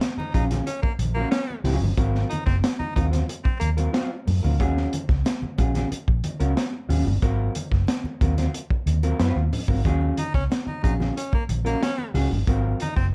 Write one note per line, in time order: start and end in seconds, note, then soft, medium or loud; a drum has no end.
0.01 muted hollow-body jazz guitar stroke soft
0.01 snare loud
0.01 closed hi-hat medium
0.01 muted conga soft
0.17 0.31 D#4 medium
0.17 muted fingered electric bass stroke soft
0.17 muted hollow-body jazz guitar stroke soft
0.17 muted conga soft
0.17 high conga medium
0.34 0.60 A#1 medium
0.34 0.47 F#3 medium
0.34 0.47 C#4 medium
0.34 0.44 D#4 medium
0.34 0.47 F4 medium
0.34 0.47 G#4 medium
0.34 kick medium
0.34 closed hi-hat medium
0.34 low conga medium
0.51 0.64 F#3 soft
0.51 0.64 C#4 soft
0.51 0.63 F4 medium
0.51 0.63 G#4 medium
0.51 snare soft
0.51 closed hi-hat medium
0.51 high conga medium
0.66 0.80 C#4 medium
0.66 muted hollow-body jazz guitar stroke soft
0.66 closed hi-hat medium
0.66 muted conga soft
0.82 0.92 A#3 medium
0.82 muted fingered electric bass stroke soft
0.82 muted hollow-body jazz guitar stroke soft
0.82 kick loud
0.99 1.24 A#1 medium
0.99 closed hi-hat medium
0.99 high conga medium
1.14 1.31 F#3 medium
1.14 1.28 A#3 loud
1.14 1.31 C#4 medium
1.14 1.31 F4 medium
1.14 1.32 A#4 medium
1.31 1.58 C#4 medium
1.31 muted hollow-body jazz guitar stroke soft
1.31 snare loud
1.31 closed hi-hat medium
1.49 muted hollow-body jazz guitar stroke soft
1.49 muted conga soft
1.64 1.77 C#2 medium
1.64 1.85 F#3 medium
1.64 1.81 C#4 medium
1.64 1.80 F4 medium
1.64 1.80 G#4 medium
1.64 open hi-hat medium
1.64 low conga medium
1.80 1.93 G1 medium
1.80 muted hollow-body jazz guitar stroke soft
1.84 high conga medium
1.84 low conga medium
1.97 2.23 G#1 medium
1.97 2.28 F#3 medium
1.97 2.28 C4 loud
1.97 2.29 F4 medium
1.97 2.29 A#4 loud
1.97 kick loud
1.97 closed hi-hat medium
2.15 snare soft
2.15 muted conga soft
2.30 2.43 D#4 medium
2.30 closed hi-hat medium
2.30 high conga medium
2.46 2.60 F#1 loud
2.46 2.56 C4 medium
2.46 muted hollow-body jazz guitar stroke medium
2.46 kick medium
2.46 snare soft
2.64 muted hollow-body jazz guitar stroke soft
2.64 snare loud
2.64 closed hi-hat medium
2.79 2.93 D#4 medium
2.79 muted fingered electric bass stroke medium
2.79 muted hollow-body jazz guitar stroke medium
2.79 high conga medium
2.96 3.22 D#2 medium
2.96 3.08 F#3 medium
2.96 3.09 C4 medium
2.96 3.06 D#4 medium
2.96 3.09 F4 medium
2.96 3.09 A#4 medium
2.96 kick medium
2.96 closed hi-hat medium
2.96 low conga medium
3.12 3.25 F#3 soft
3.12 3.25 C4 soft
3.12 3.25 F4 medium
3.12 3.25 C5 medium
3.12 snare soft
3.12 closed hi-hat medium
3.12 high conga medium
3.28 muted hollow-body jazz guitar stroke soft
3.28 closed hi-hat medium
3.28 muted conga soft
3.44 3.58 C4 medium
3.44 muted hollow-body jazz guitar stroke soft
3.44 muted fingered electric bass stroke soft
3.44 kick loud
3.44 muted conga soft
3.60 3.87 D#2 medium
3.60 3.70 A#3 medium
3.60 closed hi-hat medium
3.60 high conga medium
3.77 3.92 F#3 medium
3.77 3.92 C4 medium
3.77 3.92 F4 medium
3.77 3.93 A#4 medium
3.77 closed hi-hat soft
3.93 4.10 F#3 medium
3.93 4.10 C4 loud
3.93 4.10 F4 loud
3.93 4.10 C5 medium
3.93 snare loud
3.93 closed hi-hat medium
3.93 muted conga soft
4.26 4.40 F#2 medium
4.26 muted hollow-body jazz guitar stroke soft
4.26 open hi-hat medium
4.26 low conga medium
4.43 4.60 D2 medium
4.43 4.56 F#3 medium
4.43 4.56 C4 medium
4.43 4.56 F4 medium
4.43 4.56 A#4 medium
4.43 high conga medium
4.43 low conga medium
4.60 4.85 D#2 loud
4.60 4.90 F#3 medium
4.60 4.90 C#4 medium
4.60 4.91 F4 medium
4.60 4.90 G#4 medium
4.60 kick loud
4.60 closed hi-hat medium
4.60 muted conga soft
4.77 snare soft
4.93 closed hi-hat medium
4.93 high conga medium
5.09 5.22 C#2 medium
5.09 muted hollow-body jazz guitar stroke soft
5.09 kick loud
5.09 snare soft
5.25 muted hollow-body jazz guitar stroke soft
5.25 snare loud
5.25 closed hi-hat loud
5.25 muted conga soft
5.42 muted fingered electric bass stroke medium
5.42 muted hollow-body jazz guitar stroke soft
5.42 high conga medium
5.58 5.84 A#1 medium
5.58 5.71 F#3 medium
5.58 5.71 C#4 medium
5.58 5.71 F4 medium
5.58 5.72 G#4 medium
5.58 kick medium
5.58 closed hi-hat medium
5.58 low conga medium
5.75 5.88 F#3 medium
5.75 5.88 C#4 medium
5.75 5.88 F4 medium
5.75 5.87 G#4 medium
5.75 snare soft
5.75 closed hi-hat medium
5.75 high conga medium
5.91 muted hollow-body jazz guitar stroke soft
5.91 muted fingered electric bass stroke soft
5.91 closed hi-hat medium
5.91 muted conga soft
6.07 6.21 A#1 medium
6.07 muted hollow-body jazz guitar stroke soft
6.07 kick medium
6.24 closed hi-hat medium
6.24 high conga medium
6.40 6.53 C#2 medium
6.40 6.55 F#3 medium
6.40 6.55 C#4 medium
6.40 6.56 F4 medium
6.40 6.56 A#4 medium
6.40 closed hi-hat soft
6.56 muted hollow-body jazz guitar stroke medium
6.56 snare loud
6.56 closed hi-hat medium
6.73 muted hollow-body jazz guitar stroke soft
6.89 7.02 D#2 medium
6.89 7.05 F#3 medium
6.89 7.05 C#4 medium
6.89 7.06 F4 medium
6.89 7.06 G#4 medium
6.89 open hi-hat medium
6.89 low conga medium
7.05 7.18 G1 medium
7.05 muted hollow-body jazz guitar stroke medium
7.05 high conga medium
7.05 low conga medium
7.22 7.48 G#1 loud
7.22 7.53 F#3 loud
7.22 7.53 C4 medium
7.22 7.53 F4 medium
7.22 7.53 A#4 loud
7.22 kick loud
7.22 closed hi-hat medium
7.22 muted conga soft
7.55 closed hi-hat medium
7.55 high conga medium
7.71 7.84 F#1 loud
7.71 muted hollow-body jazz guitar stroke medium
7.71 kick loud
7.71 snare soft
7.87 muted hollow-body jazz guitar stroke soft
7.87 snare loud
7.87 closed hi-hat medium
7.87 muted conga soft
8.04 muted fingered electric bass stroke soft
8.04 muted hollow-body jazz guitar stroke soft
8.04 muted conga soft
8.21 8.47 D#2 medium
8.21 8.34 F#3 medium
8.21 8.34 C4 medium
8.21 8.34 F4 medium
8.21 8.34 A#4 medium
8.21 kick loud
8.21 closed hi-hat medium
8.21 low conga medium
8.38 8.51 F#3 soft
8.38 8.51 C4 medium
8.38 8.51 F4 medium
8.38 8.51 C5 medium
8.38 snare soft
8.38 closed hi-hat medium
8.38 high conga medium
8.54 muted hollow-body jazz guitar stroke soft
8.54 closed hi-hat medium
8.70 muted fingered electric bass stroke soft
8.70 muted hollow-body jazz guitar stroke soft
8.70 kick medium
8.70 muted conga soft
8.86 9.12 D#2 medium
8.86 closed hi-hat medium
8.86 high conga medium
9.03 9.19 F#3 medium
9.03 9.19 C4 medium
9.03 9.19 F4 medium
9.03 9.19 A#4 medium
9.03 closed hi-hat soft
9.20 9.32 F#2 medium
9.20 9.40 F#3 medium
9.20 9.40 C4 medium
9.20 9.41 F4 medium
9.20 9.41 C5 loud
9.20 snare loud
9.20 closed hi-hat medium
9.20 muted conga soft
9.36 9.49 D#2 medium
9.53 muted hollow-body jazz guitar stroke soft
9.53 open hi-hat medium
9.53 low conga medium
9.68 9.81 G#1 medium
9.68 9.82 F#3 soft
9.68 9.82 C4 medium
9.68 9.81 F4 medium
9.68 9.81 A#4 medium
9.68 kick medium
9.68 high conga medium
9.68 low conga medium
9.85 10.10 D#2 loud
9.85 10.16 F#3 medium
9.85 10.16 C#4 medium
9.85 10.16 F4 loud
9.85 10.16 G#4 loud
9.85 kick loud
9.85 closed hi-hat medium
9.85 muted conga soft
10.01 muted conga soft
10.17 10.31 D#4 medium
10.17 closed hi-hat medium
10.17 high conga medium
10.34 10.47 C#2 loud
10.34 10.44 C#4 medium
10.34 muted hollow-body jazz guitar stroke soft
10.34 kick loud
10.34 snare soft
10.50 muted hollow-body jazz guitar stroke soft
10.50 snare loud
10.50 closed hi-hat medium
10.50 muted conga soft
10.66 10.81 D#4 medium
10.66 muted hollow-body jazz guitar stroke soft
10.66 muted fingered electric bass stroke soft
10.66 high conga medium
10.83 11.09 A#1 medium
10.83 10.96 F#3 medium
10.83 10.96 C#4 medium
10.83 10.94 D#4 medium
10.83 10.96 F4 medium
10.83 10.96 G#4 medium
10.83 kick medium
10.83 closed hi-hat medium
10.83 low conga medium
11.00 11.13 F#3 soft
11.00 11.13 C#4 medium
11.00 11.13 F4 medium
11.00 11.13 G#4 medium
11.00 snare soft
11.00 high conga medium
11.17 11.30 C#4 medium
11.17 muted hollow-body jazz guitar stroke soft
11.17 closed hi-hat medium
11.33 11.44 A#3 medium
11.33 muted fingered electric bass stroke soft
11.33 muted hollow-body jazz guitar stroke medium
11.33 kick loud
11.33 muted conga soft
11.49 11.74 A#1 medium
11.49 closed hi-hat medium
11.49 high conga medium
11.65 11.81 F#3 medium
11.65 11.79 A#3 loud
11.65 11.81 C#4 medium
11.65 11.81 F4 medium
11.65 11.81 A#4 medium
11.65 closed hi-hat soft
11.82 12.09 C#4 loud
11.82 muted hollow-body jazz guitar stroke soft
11.82 snare medium
11.82 closed hi-hat medium
11.82 muted conga soft
11.98 muted hollow-body jazz guitar stroke soft
11.98 muted conga soft
12.14 12.27 C#2 medium
12.14 12.30 F#3 medium
12.14 12.31 C#4 medium
12.14 12.30 F4 medium
12.14 12.30 G#4 medium
12.14 open hi-hat medium
12.14 low conga medium
12.31 12.44 G1 medium
12.31 muted hollow-body jazz guitar stroke medium
12.31 high conga medium
12.31 low conga medium
12.47 12.73 G#1 loud
12.47 12.78 F#3 medium
12.47 12.78 C4 loud
12.47 12.78 F4 loud
12.47 12.78 A#4 medium
12.47 kick loud
12.47 closed hi-hat medium
12.47 muted conga soft
12.80 12.94 D#4 loud
12.80 closed hi-hat medium
12.80 high conga medium
12.96 13.10 F#1 loud
12.96 13.06 C4 medium
12.96 muted hollow-body jazz guitar stroke soft
12.96 kick medium
12.96 snare soft